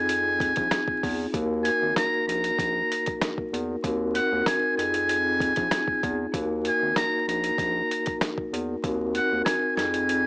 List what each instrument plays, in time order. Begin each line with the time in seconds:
Already playing: analog synth bass F2, vibraphone C4 D#4 F4 G#4, muted trumpet G#5
0.09 closed hi-hat
0.40 kick, closed hi-hat
0.56 analog synth bass A#1, kick, closed hi-hat
0.71 snare, closed hi-hat
0.88 kick
1.03 analog synth bass E2, kick, open hi-hat
1.32 analog synth bass D#2, vibraphone A#3 D#4 F#4 A#4, kick, closed hi-hat
1.64 vibraphone A#3 D#4 F#4 A#4, muted trumpet G#5, closed hi-hat
1.82 analog synth bass G#1
1.96 muted trumpet A#5, snare, closed hi-hat
2.28 analog synth bass A#1, muted trumpet A#5, closed hi-hat
2.44 closed hi-hat
2.58 analog synth bass A#1, kick, closed hi-hat
2.91 closed hi-hat
3.06 kick, closed hi-hat
3.21 snare, closed hi-hat
3.38 kick
3.53 analog synth bass E2, closed hi-hat
3.82 analog synth bass D#2, vibraphone C4 D#4 F#4 A#4, kick, closed hi-hat
4.14 vibraphone C4 D#4 F#4 A#4, muted trumpet F#5, closed hi-hat
4.32 analog synth bass D#2
4.46 muted trumpet G#5, snare, closed hi-hat
4.76 analog synth bass F2, vibraphone C4 D#4 F4 G#4, muted trumpet G#5, closed hi-hat
4.94 closed hi-hat
5.09 closed hi-hat
5.40 kick, closed hi-hat
5.56 analog synth bass A#1, kick, closed hi-hat
5.71 snare, closed hi-hat
5.88 kick
6.03 analog synth bass E2, kick, closed hi-hat
6.32 analog synth bass D#2, vibraphone A#3 D#4 F#4 A#4, kick, closed hi-hat
6.64 vibraphone A#3 D#4 F#4 A#4, muted trumpet G#5, closed hi-hat
6.82 analog synth bass G#1
6.96 muted trumpet A#5, snare, closed hi-hat
7.28 analog synth bass A#1, muted trumpet A#5, closed hi-hat
7.44 closed hi-hat
7.58 analog synth bass A#1, kick, closed hi-hat
7.91 closed hi-hat
8.06 kick, closed hi-hat
8.21 snare, closed hi-hat
8.38 kick
8.53 analog synth bass E2, closed hi-hat
8.82 analog synth bass D#2, vibraphone C4 D#4 F#4 A#4, kick, closed hi-hat
9.14 vibraphone C4 D#4 F#4 A#4, muted trumpet F#5, closed hi-hat
9.32 analog synth bass D#2
9.45 muted trumpet G#5, snare, closed hi-hat
9.76 analog synth bass F2, vibraphone C4 D#4 F4 G#4, muted trumpet G#5, snare, closed hi-hat
9.94 closed hi-hat
10.09 closed hi-hat